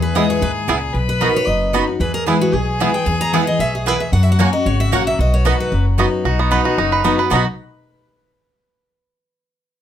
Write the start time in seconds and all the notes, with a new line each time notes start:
Already playing: E2 G#4
0.02 B4
0.15 E3 G#3 B3 E4 G#4 B4 D#5 G#5
0.30 C#5
0.41 D#2 G#2 B4
0.68 C#2 A#2 B3 E4 G#4 B4 G#5
0.94 B1 B2 B4
1.09 B4
1.20 F#3 B3 D#4 F#4 A#4 D#5 B5
1.34 D#4 F#4 C#5
1.47 F#1 F#2 D#5
1.73 F#3 B3 D#4 F#4 D#5 B5
1.87 F#4
2.00 E2 G#4 B4
2.14 A#4
2.26 E3 G#3 B3 E4 G#4 B4 G#5
2.41 F#4
2.53 B1 B2 G#4
2.79 E3 G#3 B3 E4 G#4 B4 G#5
2.94 B3 E4 G5
3.06 E2 G#5
3.21 A#5
3.32 E3 G#3 B3 E4 G#4 B4 F#5 G#5
3.46 B3 E4 D#5
3.59 B1 B2 E5
3.75 G#4
3.86 E2 B3 E4 G#4 B4 G#5
4.00 E5
4.12 F#2 F#4 F#5
4.23 E5
4.32 F#5
4.39 F#3 A#3 C#4 F#4 C#5 F#5 G#5
4.53 C#4 F#4 D#5
4.66 G#1 C#3 C#5
4.80 E5
4.91 A#1 F#3 A#3 C#4 F#4 C#5 F#5
5.07 E5
5.18 B1 B2 F#4 D#5
5.34 C#5
5.45 F#3 B3 D#4 F#4 B4 D#5 B5
5.60 B4
5.72 F#1 F#2
5.98 F#3 B3 D#4 F#4 D#5 B5
6.25 B1 B2 D#4 F#4
6.39 B3
6.51 F#3 B3 D#4 F#4 B4 D#5 B5
6.65 D#4 F#4
6.78 F#1 F#2 D#4
6.92 B4
7.04 F#3 B3 D#4 F#4 D#5 B5
7.18 D#4 F#4 B4
7.30 B1 B2 F#3 B3 D#4 F#4 B4 D#5 B5
7.35 F#4